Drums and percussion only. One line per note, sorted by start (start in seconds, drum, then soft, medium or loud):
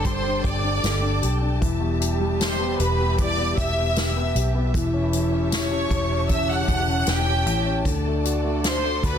0.05 kick medium
0.05 closed hi-hat medium
0.44 kick medium
0.44 closed hi-hat medium
0.84 snare loud
0.84 closed hi-hat medium
0.84 tambourine medium
1.23 closed hi-hat medium
1.62 kick medium
1.62 closed hi-hat medium
2.02 closed hi-hat medium
2.41 snare loud
2.41 closed hi-hat medium
2.41 tambourine medium
2.80 closed hi-hat medium
3.18 kick medium
3.18 closed hi-hat medium
3.57 kick loud
3.57 closed hi-hat medium
3.96 snare loud
3.96 closed hi-hat medium
3.96 tambourine medium
4.36 closed hi-hat medium
4.74 kick loud
4.74 closed hi-hat medium
5.13 closed hi-hat medium
5.52 snare loud
5.52 closed hi-hat medium
5.52 tambourine medium
5.91 kick medium
5.91 closed hi-hat medium
6.29 kick medium
6.29 closed hi-hat medium
6.68 kick medium
6.68 closed hi-hat medium
7.07 snare loud
7.07 closed hi-hat medium
7.07 tambourine medium
7.47 closed hi-hat medium
7.85 kick medium
7.85 closed hi-hat medium
8.25 closed hi-hat medium
8.64 snare loud
8.64 closed hi-hat loud
8.64 tambourine medium
9.03 kick medium
9.03 closed hi-hat medium